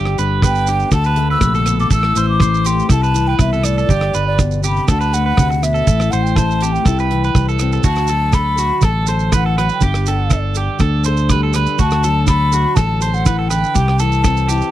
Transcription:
Already playing: G1 G2 G3 G4
0.05 cross-stick
0.18 G1 D3 B4, closed hi-hat, shekere
0.42 B3 B4 G5, kick, cross-stick, shekere
0.56 shekere
0.67 D4 G4, closed hi-hat, shekere
0.80 shekere
0.91 D2 D3 F#4 A4 A5, kick, cross-stick, shekere
1.04 B4, shekere
1.16 A3, closed hi-hat
1.30 B4 E6
1.41 A#1 C3, kick, cross-stick, shekere
1.55 A4, shekere
1.66 B2, cross-stick, closed hi-hat, shekere
1.80 A4 D6, shekere
1.91 A1 A2 E4 A4 E6, kick, shekere
2.03 cross-stick
2.15 A1 E3 C5, closed hi-hat, shekere
2.29 D6
2.40 A3 C5, kick, cross-stick, shekere
2.54 shekere
2.65 C4 G4 C6, closed hi-hat, shekere
2.79 shekere
2.89 C2 C3 E4 A4 A5, kick, cross-stick, shekere
3.03 B4, shekere
3.14 E3, closed hi-hat, shekere
3.27 B4 G5
3.39 C2 B2 E5, kick, cross-stick, shekere
3.53 A4, shekere
3.63 A2 D5, cross-stick, closed hi-hat, shekere
3.78 A4, shekere
3.89 G1 G2 G4, kick, shekere
4.01 cross-stick
4.13 G1 D3 B4, closed hi-hat, shekere
4.28 D5
4.39 B2, kick, cross-stick, shekere
4.51 shekere
4.63 C3 G4 B5, closed hi-hat, shekere
4.77 shekere
4.88 D2 D3 A3 D4 F#4 A4 A5, kick, cross-stick, shekere
5.01 B4, shekere
5.13 A3 F#5, closed hi-hat, shekere
5.26 B4
5.37 D2 C3, kick, cross-stick, shekere
5.50 muted clean electric guitar stroke, shekere
5.62 B2 E5, cross-stick, closed hi-hat, shekere
5.74 A4, shekere
5.87 A1 A2 E4 A4, kick, shekere
6.00 cross-stick, shekere
6.11 A1 C5 F#5, closed hi-hat, shekere
6.23 G5, shekere
6.36 A3 C5 A5, kick, cross-stick, shekere
6.51 shekere
6.60 C4 G4, closed hi-hat, shekere
6.73 G5, shekere
6.85 C2 C3 E4 A4, kick, cross-stick, shekere
6.99 B4, shekere
7.11 E3, closed hi-hat
7.24 B4, shekere
7.35 C2 G3, kick, cross-stick, shekere
7.49 A4, shekere
7.59 C4, cross-stick, closed hi-hat, shekere
7.72 A4, shekere
7.83 D2 D3 F#4 A5, kick, crash, shekere
7.96 cross-stick, shekere
8.07 F#3 A4, closed hi-hat, shekere
8.33 A4 B5, kick, cross-stick, shekere
8.58 F#4 A4, closed hi-hat, shekere
8.81 A1 A4 A5, kick, cross-stick, shekere
9.07 A4 C5, closed hi-hat, shekere
9.19 shekere
9.32 E3 B4 F#5, kick, cross-stick, shekere
9.46 A4
9.58 F#3 B4, cross-stick, closed hi-hat
9.69 G5, shekere
9.81 G1 G2 G4, kick, shekere
9.94 cross-stick, shekere
10.06 D3 A4, closed hi-hat, shekere
10.30 D4 A4, kick, cross-stick, shekere
10.55 G4 A4, closed hi-hat, shekere
10.79 D2 D4 A4, kick, cross-stick, shekere
11.04 A4 C5, closed hi-hat, shekere
11.17 shekere
11.29 G3 B4, kick, cross-stick, shekere
11.43 A4
11.53 D3 B4, cross-stick, closed hi-hat, shekere
11.66 shekere
11.79 D2 D3 F#4 A5, kick, shekere
11.91 cross-stick, shekere
12.03 F#3 A4, closed hi-hat, shekere
12.27 A4 B5, kick, cross-stick, shekere
12.52 F#4 A4, closed hi-hat, shekere
12.75 A1 A4 A5, kick, cross-stick, shekere
13.01 A4 C5, closed hi-hat, shekere
13.14 F#5, shekere
13.26 E3 B4, kick, cross-stick, shekere
13.39 A4
13.48 B4 G5, cross-stick, closed hi-hat, shekere
13.53 D3
13.64 shekere
13.75 C2 C3 G4, kick, shekere
13.88 cross-stick
13.99 E3 A4 A5, closed hi-hat, shekere
14.12 shekere
14.24 C4 A4, kick, cross-stick, shekere
14.37 shekere
14.48 E4 G4, closed hi-hat, shekere
14.61 shekere

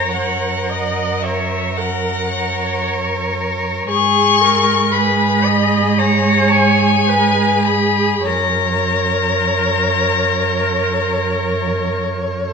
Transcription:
Already playing: F#2 A#4 C#5 A#5
0.14 F#5
0.70 D#5
1.22 C#5 E5
1.77 A#4 F#5
2.32 C#5
3.89 G#2 G#4 C#6
4.41 A#4
4.92 G#4 B4 B5
5.45 D#5
5.99 C#5 A#5
6.52 G#5
7.08 B4
7.65 G#4 B5
8.26 F#2 A#4 C#5 A#5

